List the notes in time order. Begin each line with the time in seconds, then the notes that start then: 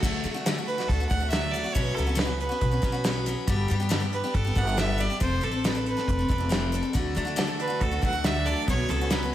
0.02 D2 D3 F#3 A3 D4 F#4, kick, crash
0.24 D3 F#3 A3 D4 F#4, closed hi-hat
0.34 A3 D4 F#4
0.46 D3 F#3 A3 D4 F#4, snare, closed hi-hat
0.58 A3 D4 F#4
0.66 B4, closed hi-hat
0.78 A3 D4 F#4, snare
0.88 D2 A4, kick, closed hi-hat
1.00 A3 D4 F#4
1.09 D2 F#3 A3 D4 F#4 F#5, kick, closed hi-hat
1.20 A3 D4 F#4
1.30 D3 F#3 A3 D4 F#4 E5, snare, closed hi-hat
1.51 F#3 D5, closed hi-hat
1.55 A3 D4 F#4
1.64 A3 D4 F#4
1.72 B1 B2 F#3 B3 C#4 F#4 C#5, kick, closed hi-hat
1.94 C#2 F#3 A4, closed hi-hat
1.98 B3 C#4 F#4
2.07 B3 C#4 F#4
2.15 B2 F#3 B3 C#4 F#4 B4, snare, closed hi-hat
2.25 B3 C#4 F#4
2.39 B4, closed hi-hat
2.49 B3 C#4 F#4
2.61 B1, kick, closed hi-hat
2.71 B3 C#4 F#4
2.82 B1 F#3 B3 C#4 F#4, kick, closed hi-hat
2.92 B3 C#4 F#4
3.04 B2 F#3 B3 C#4 F#4, snare, closed hi-hat
3.26 F#3 B3 C#4 F#4, closed hi-hat
3.47 G1 G2 D3 G3 B3 D4 G4, kick, closed hi-hat
3.68 G2 G3 B3 D4 G4, closed hi-hat
3.80 G3 B3 D4 G4
3.89 G2 D3 G3 B3 D4 G4, snare, closed hi-hat
4.00 G3 B3 D4 G4
4.13 B4, closed hi-hat
4.24 G3 B3 D4 G4
4.34 G1 A4, kick, closed hi-hat
4.45 G3 B3 D4 G4
4.55 G1 G3 B3 D4 G4 F#5, kick, closed hi-hat
4.67 G3 B3 D4 G4
4.77 G2 D3 G3 B3 D4 G4 E5, snare, closed hi-hat
4.98 G3 B3 D4 G4 D5, closed hi-hat
5.10 G3 B3 D4 G4
5.20 F1 F3 C4 D4 A4 C5, kick, closed hi-hat
5.41 A1 F3 C4 D4 A4, closed hi-hat
5.51 C4 D4 A4
5.64 F3 C4 D4 A4 B4, snare, closed hi-hat
5.75 C4 D4 A4
5.86 B4, closed hi-hat
5.97 C4 D4 A4, snare
6.08 F1, kick, closed hi-hat
6.19 C4 D4 A4
6.28 F1 F3 C4 D4 A4, kick, closed hi-hat
6.38 C4 D4 A4
6.49 F3 C4 D4 A4, snare, closed hi-hat
6.72 F3 C4 D4 A4, closed hi-hat
6.83 C4 D4 A4
6.93 D2 D3 F#3 A3 D4 F#4, kick, closed hi-hat
7.15 D3 F#3 A3 D4 F#4, closed hi-hat
7.25 A3 D4 F#4
7.36 D3 F#3 A3 D4 F#4 A4, snare, closed hi-hat
7.47 A3 D4 F#4
7.59 D4 B4, closed hi-hat
7.68 A3 D4 F#4
7.80 D2 F#4 A4, kick, closed hi-hat
7.91 A3 D4 F#4
8.02 D2 D3 F#3 A3 D4 F#4 F#5, kick, closed hi-hat
8.13 A3 D4 F#4
8.24 D3 F#3 A3 D4 F#4 E5, snare, closed hi-hat
8.45 F#3 A3 D4 F#4 A4 D5, closed hi-hat
8.67 B1 B2 F#3 B3 C#4 F#4 C#5, kick, closed hi-hat
8.89 C#2 F#3 B3 C#4 F#4 A4, closed hi-hat
9.01 B3 C#4 F#4
9.10 B2 F#3 B3 C#4 F#4 B4, snare, closed hi-hat
9.23 B3 C#4 F#4